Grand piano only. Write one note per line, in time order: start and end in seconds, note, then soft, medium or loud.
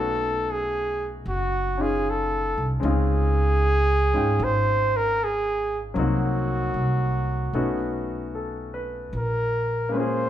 0.00 2.80 A3 soft
0.00 2.81 B3 soft
0.00 1.76 C#4 soft
0.00 1.78 D#4 soft
0.00 2.85 F#4 soft
1.78 2.81 C#4 soft
1.78 2.82 D#4 soft
1.78 2.83 F4 soft
2.80 5.95 G#3 soft
2.80 5.95 C4 soft
2.80 4.12 C#4 soft
2.80 4.12 D#4 soft
2.85 4.14 F4 medium
4.13 5.95 C#4 soft
4.13 5.96 D#4 soft
4.13 5.96 F4 soft
4.13 5.97 G5 soft
5.94 7.52 F#3 soft
5.94 7.53 A#3 soft
5.94 7.54 C4 soft
5.94 7.54 D#4 soft
5.99 7.54 F#4 soft
7.54 9.13 A3 soft
7.54 9.13 B3 soft
7.54 9.14 C#4 soft
7.54 9.14 D#4 soft
7.54 9.14 F#4 soft
8.35 8.97 A4 soft
8.74 9.29 B4 soft
9.89 10.29 G#3 soft
9.89 10.29 A#3 soft
9.94 10.29 C#4 soft
9.94 10.29 F4 soft
10.00 10.29 G#4 medium